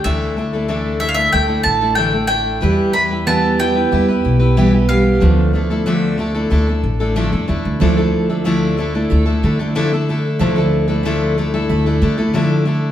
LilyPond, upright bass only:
\new Staff \with { instrumentName = "Upright bass" } { \clef bass \time 4/4 \key d \dorian \tempo 4 = 93 d,2 d,8 a,,4. | e,2 e,8 b,,4. | d,2 d,8 a,,8. f,16 e,16 d,16 | d,2 d,8 d4. |
d,2 d,8 d4. | }